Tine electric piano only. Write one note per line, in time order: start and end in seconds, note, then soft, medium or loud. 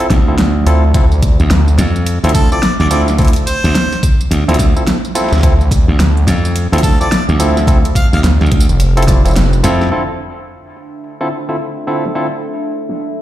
0.28 0.34 C4 medium
0.28 0.34 E4 medium
0.28 0.34 F4 medium
0.28 0.34 A4 medium
0.66 0.83 C4 medium
0.66 0.83 E4 medium
0.66 0.83 F4 medium
0.66 0.83 A4 loud
0.94 1.04 C4 medium
0.94 1.05 E4 medium
0.94 1.05 F4 medium
0.94 1.05 A4 loud
2.24 2.30 C4 medium
2.24 2.30 E4 medium
2.24 2.30 F4 medium
2.24 2.30 A4 loud
2.52 2.58 C4 medium
2.52 2.58 E4 medium
2.52 2.58 F4 medium
2.52 2.58 A4 medium
2.91 3.07 C4 medium
2.91 3.07 E4 medium
2.91 3.07 F4 medium
2.91 3.07 A4 medium
3.19 3.29 C4 medium
3.19 3.29 E4 medium
3.19 3.29 F4 medium
3.19 3.29 A4 loud
4.48 4.55 C4 medium
4.48 4.55 E4 medium
4.48 4.55 F4 medium
4.48 4.55 A4 loud
4.76 4.83 C4 medium
4.76 4.83 E4 medium
4.76 4.83 F4 medium
4.76 4.83 A4 medium
5.15 5.31 C4 medium
5.15 5.31 E4 medium
5.15 5.31 F4 medium
5.15 5.31 A4 loud
5.43 5.53 C4 medium
5.43 5.53 E4 medium
5.43 5.53 F4 medium
5.43 5.53 A4 loud
6.73 6.79 C4 medium
6.73 6.79 E4 medium
6.73 6.79 F4 medium
6.73 6.79 A4 loud
7.01 7.07 C4 medium
7.01 7.07 E4 medium
7.01 7.07 F4 medium
7.01 7.07 A4 medium
7.40 7.56 C4 medium
7.40 7.56 E4 medium
7.40 7.56 F4 medium
7.40 7.56 A4 loud
7.68 7.78 C4 loud
7.68 7.78 E4 medium
7.68 7.78 F4 medium
7.68 7.78 A4 loud
8.97 9.03 C4 medium
8.97 9.03 E4 medium
8.97 9.03 F4 medium
8.97 9.03 A4 loud
9.08 9.21 C4 medium
9.08 9.21 E4 medium
9.08 9.21 F4 medium
9.08 9.21 D5 medium
9.25 9.31 C4 medium
9.25 9.31 E4 medium
9.25 9.31 F4 medium
9.25 9.31 A4 medium
9.63 9.89 C4 medium
9.63 9.89 E4 medium
9.63 9.89 F4 medium
9.63 9.89 A4 loud
9.92 10.02 D3 medium
9.92 10.02 C4 medium
9.92 10.02 E4 medium
9.92 10.02 F4 medium
9.92 10.02 A4 medium
11.21 11.27 D3 medium
11.21 11.27 C4 medium
11.21 11.27 E4 medium
11.21 11.27 F4 medium
11.21 11.27 A4 medium
11.49 11.55 D3 medium
11.49 11.55 C4 medium
11.49 11.55 E4 medium
11.49 11.55 F4 medium
11.49 11.55 A4 medium
11.87 12.04 D3 medium
11.87 12.04 C4 medium
11.87 12.04 E4 medium
11.87 12.04 F4 medium
11.87 12.04 A4 medium
12.15 12.26 D3 medium
12.15 12.26 C4 medium
12.15 12.26 E4 medium
12.15 12.26 F4 medium
12.15 12.26 A4 medium